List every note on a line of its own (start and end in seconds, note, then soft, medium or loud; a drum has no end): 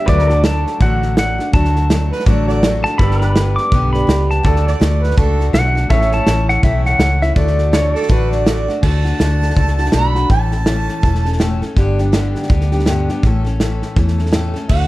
0.06 0.64 D2 loud
0.06 0.29 D3 medium
0.06 0.30 F#3 medium
0.06 0.30 A3 medium
0.06 0.30 D4 medium
0.06 2.43 F#4 medium
0.06 0.28 F#4 medium
0.06 2.44 A4 medium
0.06 0.31 B4 medium
0.06 2.96 D5 medium
0.06 2.45 D5 medium
0.06 0.46 D5 loud
0.06 kick loud
0.06 snare soft
0.19 snare soft
0.29 0.43 A3 soft
0.29 0.44 D4 soft
0.29 0.44 F#4 medium
0.29 2.95 A4 medium
0.29 snare soft
0.43 0.80 F#3 medium
0.43 0.80 A3 medium
0.43 0.82 D4 medium
0.43 0.82 F#4 medium
0.43 0.78 A5 medium
0.43 snare loud
0.43 hi-hat pedal medium
0.67 snare soft
0.80 1.37 A1 medium
0.80 1.17 D3 medium
0.80 1.16 F#3 medium
0.80 1.17 A3 medium
0.80 1.19 D4 medium
0.80 1.18 F#4 medium
0.80 1.15 F#5 medium
0.80 kick loud
0.80 snare soft
1.02 snare soft
1.17 1.39 F#3 medium
1.17 1.39 A3 medium
1.17 1.39 D4 medium
1.17 1.37 F#4 medium
1.17 1.52 F#5 medium
1.17 snare loud
1.17 hi-hat pedal medium
1.38 1.54 A3 soft
1.38 1.54 D4 soft
1.38 1.53 F#4 soft
1.38 snare soft
1.53 2.10 D2 loud
1.53 1.90 D3 medium
1.53 1.89 F#3 medium
1.53 1.90 A3 medium
1.53 1.92 D4 medium
1.53 1.91 F#4 medium
1.53 2.59 A5 loud
1.53 kick loud
1.53 snare soft
1.65 snare soft
1.76 snare soft
1.90 2.26 F#3 medium
1.90 2.26 A3 medium
1.90 2.27 D4 medium
1.90 2.28 F#4 medium
1.90 snare loud
1.90 hi-hat pedal medium
2.12 2.25 B4 medium
2.12 snare soft
2.20 snare soft
2.26 2.83 A1 medium
2.26 2.62 D3 medium
2.26 2.62 F#3 loud
2.26 2.63 A3 loud
2.26 2.65 D4 medium
2.26 2.64 F#4 medium
2.26 2.47 D5 medium
2.26 kick loud
2.26 snare soft
2.47 2.99 F#4 medium
2.47 2.99 A4 medium
2.47 2.72 D5 loud
2.47 2.99 D5 medium
2.47 snare soft
2.63 2.85 F#3 medium
2.63 2.85 A3 medium
2.63 2.86 D4 medium
2.63 2.85 F#4 medium
2.63 snare loud
2.63 hi-hat pedal medium
2.84 3.01 D4 soft
2.84 3.00 F#4 medium
2.84 2.99 A5 medium
2.84 snare soft
2.89 3.01 A3 soft
2.98 3.56 G1 loud
2.98 3.22 G2 medium
2.98 3.22 D3 medium
2.98 3.22 B3 medium
2.98 3.91 G4 medium
2.98 3.25 A4 medium
2.98 3.92 B4 medium
2.98 4.44 D5 medium
2.98 3.93 D5 medium
2.98 3.19 B5 loud
2.98 kick loud
2.98 snare soft
3.02 3.22 G3 medium
3.02 3.23 D4 medium
3.02 3.21 G4 medium
3.11 snare soft
3.20 3.37 D4 soft
3.20 3.36 G4 medium
3.20 3.54 B5 medium
3.20 snare soft
3.25 3.34 G3 soft
3.25 3.35 B3 soft
3.25 4.44 B4 medium
3.35 3.72 G3 medium
3.35 3.72 B3 medium
3.35 3.74 D4 medium
3.35 3.73 G4 medium
3.35 snare loud
3.35 hi-hat pedal medium
3.56 3.92 D6 loud
3.56 snare soft
3.72 4.03 B1 medium
3.72 4.08 G2 medium
3.72 4.09 D3 medium
3.72 4.06 G3 medium
3.72 4.07 B3 medium
3.72 4.08 D4 loud
3.72 4.09 G4 medium
3.72 kick loud
3.72 snare soft
3.93 4.44 G4 soft
3.93 4.45 B4 soft
3.93 4.45 D5 medium
3.93 4.31 B5 medium
3.93 snare soft
4.07 4.39 C#2 medium
4.07 4.43 G3 medium
4.07 4.44 B3 medium
4.07 4.44 D4 medium
4.07 4.46 G4 medium
4.07 snare loud
4.07 hi-hat pedal medium
4.30 4.64 A5 medium
4.30 snare soft
4.43 4.73 D2 loud
4.43 4.78 D3 medium
4.43 4.80 A3 medium
4.43 4.81 D4 medium
4.43 5.87 F#4 medium
4.43 4.82 F#4 medium
4.43 5.89 A4 medium
4.43 5.88 A4 medium
4.43 5.90 D5 medium
4.43 5.89 D5 medium
4.43 kick loud
4.43 snare soft
4.56 snare soft
4.67 5.05 D5 medium
4.67 snare soft
4.80 5.12 D2 loud
4.80 5.17 D3 medium
4.80 5.17 A3 medium
4.80 5.17 D4 medium
4.80 5.18 F#4 medium
4.80 snare loud
4.80 hi-hat pedal medium
5.04 5.17 B4 medium
5.04 snare soft
5.11 snare soft
5.18 5.49 C#2 medium
5.18 5.54 A3 loud
5.18 5.54 D4 medium
5.18 5.55 F#4 loud
5.18 5.46 A4 loud
5.18 kick loud
5.18 snare soft
5.40 snare soft
5.53 5.85 B1 medium
5.53 5.76 D3 medium
5.53 5.77 A3 medium
5.53 5.76 D4 medium
5.53 5.74 F#4 medium
5.53 5.92 F#5 medium
5.53 snare loud
5.53 hi-hat pedal medium
5.75 5.91 A3 soft
5.75 5.91 D4 soft
5.75 5.90 F#4 medium
5.75 snare soft
5.88 6.19 A1 loud
5.88 6.13 A2 medium
5.88 6.13 E3 medium
5.88 7.33 E4 medium
5.88 7.35 A4 medium
5.88 7.34 A4 medium
5.88 7.36 C#5 medium
5.88 7.35 C#5 medium
5.88 6.11 E5 loud
5.88 kick loud
5.88 snare soft
5.92 6.14 A3 medium
5.92 6.13 C#4 medium
5.92 6.11 E4 medium
6.02 snare soft
6.12 6.27 A3 soft
6.12 6.28 C#4 soft
6.12 6.27 E4 medium
6.12 6.47 A5 medium
6.12 snare soft
6.27 6.58 A1 medium
6.27 6.63 E3 medium
6.27 6.64 A3 medium
6.27 6.64 C#4 medium
6.27 6.65 E4 medium
6.27 snare loud
6.27 hi-hat pedal medium
6.49 6.64 F#5 medium
6.49 snare soft
6.63 6.95 B1 medium
6.63 7.00 A2 medium
6.63 6.99 E3 medium
6.63 7.01 A3 loud
6.63 7.00 C#4 medium
6.63 7.01 E4 medium
6.63 6.87 E5 loud
6.63 kick loud
6.63 snare soft
6.86 7.24 F#5 medium
6.86 snare soft
6.99 7.31 C#2 medium
6.99 7.22 E3 medium
6.99 7.23 A3 medium
6.99 7.23 C#4 medium
6.99 snare loud
6.99 hi-hat pedal medium
7.03 7.21 E4 medium
7.22 7.35 A3 soft
7.22 7.37 C#4 soft
7.22 7.37 E4 medium
7.22 7.36 E5 medium
7.22 snare soft
7.35 7.93 D2 loud
7.35 7.71 D3 medium
7.35 7.73 A3 medium
7.35 7.74 D4 medium
7.35 8.43 F#4 medium
7.35 7.74 F#4 medium
7.35 8.44 A4 medium
7.35 8.42 D5 medium
7.35 8.45 D5 medium
7.35 kick loud
7.35 snare soft
7.47 snare soft
7.58 snare soft
7.73 8.07 D3 medium
7.73 8.09 A3 medium
7.73 8.09 D4 medium
7.73 8.10 F#4 medium
7.73 8.82 A4 medium
7.73 7.94 C#5 medium
7.73 snare loud
7.73 hi-hat pedal medium
7.94 8.10 A4 loud
7.94 8.82 D5 medium
7.94 snare soft
8.02 snare soft
8.09 8.67 A1 medium
8.09 8.45 D3 medium
8.09 8.46 A3 loud
8.09 8.47 D4 loud
8.09 8.47 F#4 loud
8.09 8.33 B4 medium
8.09 kick loud
8.09 snare soft
8.31 8.74 D5 medium
8.31 snare soft
8.46 8.68 D3 medium
8.46 8.69 A3 medium
8.46 8.69 D4 medium
8.46 8.83 F#4 medium
8.46 8.67 F#4 medium
8.46 8.84 A4 medium
8.46 8.84 D5 medium
8.46 snare loud
8.46 hi-hat pedal medium
8.68 8.83 A3 soft
8.68 8.83 D4 soft
8.68 8.83 F#4 medium
8.68 snare soft
8.83 9.12 D2 medium
8.83 9.05 D3 medium
8.83 9.06 A3 medium
8.83 9.06 D4 medium
8.83 9.04 F#4 medium
8.83 9.96 A5 medium
8.83 kick medium
8.83 snare soft
8.83 crash medium
9.05 9.19 A3 soft
9.05 9.20 D4 soft
9.05 9.20 F#4 soft
9.05 snare soft
9.19 9.51 D2 medium
9.19 9.54 D3 medium
9.19 9.56 A3 medium
9.19 9.57 D4 medium
9.19 9.58 F#4 medium
9.19 snare medium
9.19 hi-hat pedal medium
9.42 snare soft
9.50 snare soft
9.55 9.88 C#2 medium
9.55 9.78 D3 medium
9.55 9.79 A3 medium
9.55 9.79 D4 medium
9.55 9.78 F#4 medium
9.55 kick loud
9.55 snare soft
9.67 snare soft
9.78 9.94 D4 soft
9.78 9.93 F#4 soft
9.78 snare soft
9.83 9.95 A3 soft
9.83 snare soft
9.92 10.25 B1 medium
9.92 10.16 D3 medium
9.92 10.17 A3 medium
9.92 10.30 B5 loud
9.92 snare loud
9.92 hi-hat pedal medium
9.97 10.16 D4 medium
9.97 10.14 F#4 medium
10.15 10.31 A3 soft
10.15 10.31 D4 soft
10.15 10.30 F#4 medium
10.15 snare soft
10.29 10.87 A1 medium
10.29 10.52 A2 medium
10.29 10.53 E3 medium
10.29 10.53 A3 medium
10.29 10.53 C#4 medium
10.29 10.52 A4 medium
10.29 11.58 A5 loud
10.29 kick loud
10.29 snare soft
10.51 10.68 C#4 soft
10.51 10.67 A4 soft
10.51 snare soft
10.57 10.67 A3 soft
10.66 11.03 A2 medium
10.66 11.02 E3 medium
10.66 11.04 A3 medium
10.66 11.04 C#4 medium
10.66 11.04 A4 medium
10.66 snare medium
10.66 hi-hat pedal medium
10.88 snare soft
11.03 11.60 E1 medium
11.03 11.25 E3 medium
11.03 11.26 A3 medium
11.03 11.26 C#4 medium
11.03 11.24 A4 medium
11.03 kick loud
11.03 snare soft
11.15 snare soft
11.25 11.39 A3 soft
11.25 11.40 C#4 soft
11.25 11.40 A4 soft
11.25 snare soft
11.32 snare soft
11.39 11.61 A2 medium
11.39 11.62 E3 medium
11.39 11.62 A3 medium
11.39 11.63 C#4 medium
11.39 11.61 A4 medium
11.39 snare medium
11.39 hi-hat pedal medium
11.62 11.77 A3 soft
11.62 11.78 C#4 medium
11.62 11.76 A4 medium
11.62 snare soft
11.77 12.34 G1 medium
11.77 11.99 G2 medium
11.77 11.99 D3 medium
11.77 11.99 G3 medium
11.77 11.99 B3 medium
11.77 11.99 D4 medium
11.77 11.98 G4 medium
11.77 kick loud
11.77 snare soft
11.98 12.13 G3 medium
11.98 12.13 B3 soft
11.98 12.13 D4 medium
11.98 12.13 G4 medium
11.98 snare soft
12.12 12.49 G2 medium
12.12 12.50 D3 medium
12.12 12.47 G3 medium
12.12 12.48 B3 medium
12.12 12.50 D4 medium
12.12 12.51 G4 medium
12.12 snare medium
12.12 hi-hat pedal medium
12.35 snare soft
12.43 snare soft
12.48 13.07 D2 medium
12.48 12.71 G3 medium
12.48 12.72 B3 medium
12.48 12.71 D4 medium
12.48 kick loud
12.48 snare soft
12.52 12.71 G4 medium
12.61 snare soft
12.72 12.86 G3 soft
12.72 12.86 B3 soft
12.72 12.87 D4 medium
12.72 12.87 G4 medium
12.72 snare soft
12.79 snare soft
12.86 13.08 G2 medium
12.86 13.08 D3 medium
12.86 13.09 G3 medium
12.86 13.09 B3 medium
12.86 13.09 D4 medium
12.86 13.08 G4 medium
12.86 snare medium
12.86 hi-hat pedal medium
13.09 13.25 G3 soft
13.09 13.25 B3 soft
13.09 13.24 D4 medium
13.09 13.24 G4 medium
13.09 snare soft
13.23 13.80 A1 medium
13.23 13.46 A2 medium
13.23 13.46 E3 medium
13.23 13.47 A3 medium
13.23 13.46 C#4 medium
13.23 13.43 A4 medium
13.23 kick loud
13.23 snare soft
13.44 13.60 A3 soft
13.44 13.61 C#4 soft
13.44 13.59 A4 medium
13.44 snare soft
13.60 13.97 A2 medium
13.60 13.96 E3 medium
13.60 13.97 A3 medium
13.60 13.98 C#4 medium
13.60 13.98 A4 medium
13.60 snare medium
13.60 hi-hat pedal medium
13.82 snare soft
13.96 14.53 E2 medium
13.96 14.19 E3 medium
13.96 14.19 A3 medium
13.96 14.18 C#4 medium
13.96 14.17 A4 medium
13.96 kick loud
13.96 snare soft
14.08 snare soft
14.18 14.32 A3 soft
14.18 14.32 C#4 soft
14.18 14.33 A4 soft
14.18 snare soft
14.26 snare soft
14.32 14.55 A2 medium
14.32 14.55 E3 medium
14.32 14.55 A3 medium
14.32 14.54 C#4 medium
14.32 14.52 A4 medium
14.32 snare medium
14.32 hi-hat pedal medium
14.54 14.69 A3 soft
14.54 14.70 C#4 soft
14.54 14.69 A4 medium
14.54 snare soft
14.69 14.88 D2 loud
14.69 14.88 D3 medium
14.69 14.88 A3 medium
14.69 14.88 D4 medium
14.69 14.88 F#4 medium
14.69 14.88 F#5 medium
14.69 kick loud
14.69 snare soft
14.69 crash medium